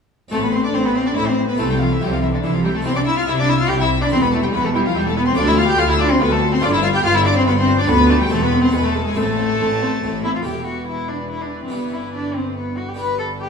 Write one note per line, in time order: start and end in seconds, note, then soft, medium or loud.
0.28 0.69 A1 medium
0.28 0.69 A2 medium
0.28 0.41 A3 loud
0.28 1.53 C4 medium
0.28 1.54 E4 medium
0.28 1.55 A4 medium
0.28 0.42 A4 medium
0.28 0.36 A5 loud
0.33 0.67 A2 medium
0.33 0.41 C4 medium
0.42 0.47 B3 medium
0.42 0.53 B4 medium
0.42 0.53 B5 loud
0.53 0.61 C4 medium
0.53 0.64 C4 medium
0.53 0.64 C5 medium
0.53 0.63 C6 loud
0.63 0.76 D4 medium
0.63 0.74 D5 medium
0.63 0.68 D6 medium
0.74 1.11 A1 medium
0.74 1.11 A2 medium
0.74 1.09 A2 medium
0.74 0.82 C4 medium
0.74 0.87 C4 loud
0.74 0.85 C5 loud
0.74 0.78 C6 loud
0.85 0.97 B3 medium
0.85 0.95 B4 medium
0.85 0.95 B5 medium
0.95 1.03 C4 medium
0.95 1.08 C4 medium
0.95 0.99 C5 medium
0.95 1.06 C6 loud
1.05 1.16 D4 medium
1.05 1.16 D5 medium
1.05 1.10 D6 medium
1.16 1.54 A1 medium
1.16 1.54 A2 medium
1.16 1.51 A2 medium
1.16 1.24 C4 medium
1.16 1.28 E4 medium
1.16 1.27 E5 loud
1.16 1.27 E6 medium
1.26 1.47 C4 medium
1.26 1.48 C5 loud
1.26 1.35 C6 medium
1.38 1.46 C4 medium
1.47 1.61 B3 medium
1.47 1.58 B4 medium
1.47 1.59 B5 medium
1.55 1.96 C2 medium
1.55 1.96 C3 medium
1.55 2.79 C4 medium
1.55 2.80 E4 medium
1.55 1.66 E4 medium
1.55 2.81 A4 medium
1.55 1.69 A4 medium
1.55 1.62 A5 loud
1.59 1.93 C3 medium
1.59 1.71 A3 loud
1.68 1.79 G3 medium
1.68 1.79 G4 medium
1.68 1.80 G5 medium
1.79 1.90 F3 medium
1.79 1.88 E4 medium
1.79 1.90 F4 medium
1.79 1.90 F5 medium
1.90 2.01 E3 medium
1.90 2.00 E4 medium
1.90 2.01 E5 medium
2.00 2.38 C2 medium
2.00 2.38 C3 medium
2.00 2.35 C3 medium
2.00 2.13 G3 medium
2.00 2.09 E4 medium
2.00 2.11 G4 loud
2.00 2.11 G5 medium
2.12 2.23 F3 medium
2.12 2.16 F4 medium
2.12 2.22 F5 medium
2.22 2.32 E3 medium
2.22 2.30 E4 medium
2.22 2.32 E4 medium
2.22 2.26 E5 medium
2.32 2.37 D3 medium
2.32 2.43 D4 medium
2.32 2.37 D5 medium
2.43 2.80 C2 medium
2.43 2.80 C3 medium
2.43 2.77 C3 medium
2.43 2.53 E3 medium
2.43 2.53 E4 medium
2.43 2.52 E4 medium
2.43 2.53 E5 medium
2.53 2.58 F3 medium
2.53 2.64 F4 medium
2.53 2.64 F5 medium
2.63 2.69 G3 medium
2.63 2.73 E4 medium
2.63 2.68 G4 medium
2.63 2.74 G5 medium
2.73 2.85 A3 medium
2.73 2.84 A4 medium
2.73 2.85 A5 loud
2.81 3.22 C2 medium
2.81 3.22 C3 medium
2.81 4.05 C4 medium
2.81 4.06 E4 medium
2.81 4.07 G4 medium
2.81 2.95 C5 loud
2.81 2.95 C6 loud
2.85 3.19 C3 medium
2.85 2.90 C4 loud
2.85 2.94 E4 medium
2.95 3.00 D4 medium
2.95 3.05 D5 medium
2.95 3.00 D6 loud
3.05 3.17 E4 medium
3.05 3.15 E4 medium
3.05 3.16 E5 medium
3.05 3.16 E6 loud
3.15 3.22 F4 medium
3.15 3.26 F5 medium
3.15 3.27 F6 loud
3.26 3.64 C2 medium
3.26 3.64 C3 medium
3.26 3.62 C3 medium
3.26 3.36 E4 medium
3.26 3.38 E4 medium
3.26 3.37 E5 loud
3.26 3.31 E6 loud
3.37 3.51 D4 loud
3.37 3.48 D5 medium
3.37 3.48 D6 loud
3.47 3.56 E4 medium
3.47 3.59 E4 medium
3.47 3.58 E5 medium
3.47 3.58 E6 loud
3.59 3.71 F4 medium
3.59 3.69 F5 medium
3.59 3.69 F6 medium
3.69 4.06 C2 medium
3.69 4.06 C3 medium
3.69 4.04 C3 medium
3.69 3.77 E4 medium
3.69 3.80 G4 loud
3.69 3.80 G5 loud
3.69 3.79 G6 loud
3.80 3.89 E4 medium
3.80 4.00 E5 loud
3.80 3.88 E6 medium
3.91 3.99 E4 medium
4.00 4.06 D4 loud
4.00 4.11 D5 medium
4.00 4.11 D6 medium
4.08 4.48 E1 medium
4.08 4.49 E2 medium
4.08 5.31 C4 medium
4.08 5.32 E4 medium
4.08 5.33 G4 medium
4.08 4.15 C5 loud
4.08 4.21 C6 loud
4.12 4.46 E2 medium
4.12 4.24 C4 medium
4.12 4.20 E4 medium
4.21 4.33 B3 medium
4.21 4.32 B4 medium
4.21 4.32 B5 loud
4.31 4.43 A3 medium
4.31 4.41 E4 medium
4.31 4.42 A4 medium
4.31 4.35 A5 loud
4.42 4.56 G3 medium
4.42 4.54 G4 medium
4.42 4.47 G5 loud
4.53 4.90 E1 medium
4.53 4.90 E2 medium
4.53 4.88 E2 medium
4.53 4.66 B3 loud
4.53 4.62 E4 medium
4.53 4.64 B4 loud
4.53 4.63 B5 loud
4.64 4.75 A3 medium
4.64 4.74 A4 medium
4.64 4.74 A5 medium
4.74 4.88 G3 medium
4.74 4.82 E4 medium
4.74 4.85 G4 medium
4.74 4.79 G5 loud
4.85 4.95 F3 loud
4.85 4.95 F4 medium
4.85 4.95 F5 medium
4.95 5.32 E1 medium
4.95 5.32 E2 medium
4.95 5.30 E2 medium
4.95 5.08 G3 medium
4.95 5.03 E4 medium
4.95 5.06 G4 loud
4.95 5.06 G5 loud
5.06 5.16 A3 medium
5.06 5.16 A4 loud
5.06 5.16 A5 medium
5.15 5.27 B3 loud
5.15 5.23 E4 medium
5.15 5.26 B4 loud
5.15 5.20 B5 loud
5.26 5.36 C4 loud
5.26 5.36 C5 medium
5.26 5.31 C6 loud
5.33 5.74 D2 loud
5.33 6.57 A3 medium
5.33 5.49 D4 loud
5.33 6.58 F4 medium
5.33 6.58 A4 medium
5.33 5.47 D5 loud
5.33 5.41 D6 loud
5.37 5.74 D2 loud
5.37 5.71 D2 medium
5.37 5.45 F4 medium
5.46 5.60 E4 loud
5.46 5.50 E5 loud
5.46 5.58 E6 loud
5.56 5.66 F4 medium
5.56 5.67 F4 loud
5.56 5.67 F5 loud
5.56 5.68 F6 loud
5.68 5.80 G4 loud
5.68 5.78 G5 loud
5.68 5.79 G6 loud
5.78 6.16 D2 loud
5.78 6.13 D2 medium
5.78 5.86 F4 medium
5.78 5.88 F4 loud
5.78 5.89 F5 loud
5.78 5.89 F6 loud
5.89 5.93 E4 loud
5.89 6.00 E5 loud
5.89 6.00 E6 loud
5.99 6.12 D4 loud
5.99 6.07 F4 medium
5.99 6.10 D5 loud
5.99 6.10 D6 loud
6.11 6.21 C4 loud
6.11 6.21 C5 loud
6.11 6.21 C6 loud
6.20 6.57 D2 medium
6.20 6.58 D2 loud
6.20 6.55 D2 medium
6.20 6.26 B3 medium
6.20 6.28 F4 medium
6.20 6.31 B4 loud
6.20 6.31 B5 loud
6.31 6.39 A3 loud
6.31 6.52 A4 loud
6.31 6.52 A5 loud
6.41 6.49 F4 medium
6.52 6.56 C4 loud
6.52 6.57 C5 loud
6.52 6.63 C6 loud
6.59 6.99 G1 loud
6.59 7.83 B3 medium
6.59 6.72 D4 loud
6.59 7.84 F4 medium
6.59 6.70 F4 medium
6.59 7.84 G4 medium
6.59 6.73 D6 loud
6.63 7.00 G2 loud
6.63 6.97 G2 medium
6.63 6.67 D5 loud
6.73 6.83 E4 loud
6.73 6.84 E5 loud
6.73 6.77 E6 loud
6.83 6.91 F4 medium
6.83 6.88 F4 loud
6.83 6.94 F5 loud
6.83 6.87 F6 loud
6.94 7.04 G4 loud
6.94 7.05 G5 loud
6.94 7.04 G6 loud
7.04 7.41 G1 loud
7.04 7.39 G2 medium
7.04 7.42 G2 loud
7.04 7.12 F4 medium
7.04 7.16 F4 loud
7.04 7.09 F5 loud
7.04 7.15 F6 loud
7.15 7.27 E4 loud
7.15 7.20 E5 loud
7.15 7.25 E6 loud
7.25 7.36 D4 loud
7.25 7.33 F4 medium
7.25 7.36 D5 loud
7.25 7.35 D6 loud
7.36 7.46 C4 loud
7.36 7.46 C5 loud
7.36 7.46 C6 loud
7.46 7.83 G1 medium
7.46 7.84 G2 loud
7.46 7.81 G2 medium
7.46 7.51 B3 loud
7.46 7.54 F4 medium
7.46 7.51 B4 loud
7.46 7.57 B5 loud
7.57 7.78 C4 loud
7.57 7.78 C5 loud
7.57 7.78 C6 medium
7.67 7.75 F4 medium
7.78 7.90 D4 loud
7.78 7.89 D5 loud
7.78 7.83 D6 loud
7.84 8.27 B3 medium
7.84 8.28 F4 medium
7.84 8.29 A4 medium
7.88 8.26 D2 loud
7.88 8.23 D2 medium
7.88 8.26 D2 medium
7.88 8.12 B3 loud
7.88 7.97 D4 loud
7.88 8.09 B4 loud
7.88 8.09 B5 loud
8.09 8.22 A3 loud
8.09 8.17 D4 medium
8.09 8.21 A4 loud
8.09 8.20 A5 loud
8.20 8.30 G3 medium
8.20 8.31 G4 loud
8.20 8.31 G5 loud
8.27 8.68 E1 loud
8.27 8.43 A3 loud
8.27 8.70 C4 medium
8.27 8.39 C4 medium
8.27 8.69 E4 medium
8.27 8.72 A4 medium
8.27 8.41 A5 loud
8.31 8.68 E2 loud
8.31 8.65 E2 medium
8.31 8.36 A4 loud
8.42 8.63 B3 loud
8.42 8.63 B4 loud
8.42 8.63 B5 loud
8.52 8.60 C4 medium
8.62 8.74 C4 loud
8.62 8.74 C5 loud
8.62 8.74 C6 medium
8.69 8.81 G#3 medium
8.69 9.13 B3 medium
8.69 8.83 B3 loud
8.69 9.13 E4 medium
8.69 9.15 G#4 medium
8.69 8.84 B5 loud
8.74 9.11 E1 medium
8.74 9.11 E2 medium
8.74 9.09 E2 medium
8.74 8.85 B4 loud
8.83 8.91 A3 medium
8.83 9.06 A4 loud
8.83 9.06 A5 medium
8.95 9.03 G#3 medium
9.05 9.18 G#3 medium
9.05 9.17 G#4 medium
9.05 9.17 G#5 loud
9.13 9.55 A1 medium
9.13 9.55 A2 loud
9.13 10.24 A3 loud
9.13 10.40 C4 medium
9.13 10.41 E4 medium
9.13 10.42 A4 medium
9.13 10.24 A5 loud
9.17 9.52 A2 medium
9.17 9.25 C4 medium
9.17 10.23 A4 loud
9.39 9.47 C4 medium
9.60 9.98 A1 medium
9.60 9.98 A2 medium
9.60 9.95 A2 medium
9.60 9.68 C4 medium
9.81 9.89 C4 medium
10.03 10.41 A1 medium
10.03 10.41 A2 medium
10.03 10.38 A2 medium
10.03 10.11 C4 medium
10.24 10.33 C4 medium
10.24 10.34 E4 medium
10.24 10.34 E5 medium
10.35 10.40 F4 medium
10.35 10.46 F5 medium
10.42 11.68 E1 medium
10.42 11.68 E2 medium
10.42 12.95 E3 medium
10.42 11.67 B3 soft
10.42 11.68 E4 soft
10.42 11.68 G4 soft
10.42 10.66 G4 medium
10.42 12.95 B4 medium
10.42 10.67 G5 medium
10.47 11.69 E2 soft
10.66 10.87 F#4 medium
10.66 10.88 F#5 soft
10.88 11.10 E4 medium
10.88 11.09 E5 medium
11.09 11.30 D4 medium
11.09 11.30 D5 soft
11.30 11.43 E4 medium
11.30 11.41 E5 soft
11.41 11.62 D4 medium
11.41 11.62 D5 soft
11.61 11.74 C4 medium
11.61 11.72 C5 soft
11.68 13.49 G1 soft
11.68 12.93 B3 soft
11.68 11.95 B3 medium
11.68 12.94 E4 soft
11.68 12.94 G4 soft
11.68 11.80 B4 medium
11.72 13.49 G2 medium
11.72 13.49 G2 soft
11.93 12.13 E4 medium
11.93 12.01 E5 medium
12.14 12.37 D4 medium
12.14 12.22 D5 soft
12.35 12.56 C4 medium
12.35 12.56 C5 medium
12.56 12.79 B3 medium
12.56 12.65 B4 soft
12.77 12.90 F#4 medium
12.77 12.88 F#5 medium
12.89 12.98 G4 medium
12.89 12.99 G5 soft
12.94 13.49 B3 soft
12.94 13.49 D4 soft
12.94 13.49 G4 soft
12.99 13.49 G3 medium
12.99 13.19 B4 medium
12.99 13.49 B4 soft
12.99 13.20 B5 medium
13.19 13.27 A4 medium
13.19 13.41 A5 medium
13.40 13.49 G4 medium
13.40 13.49 G5 medium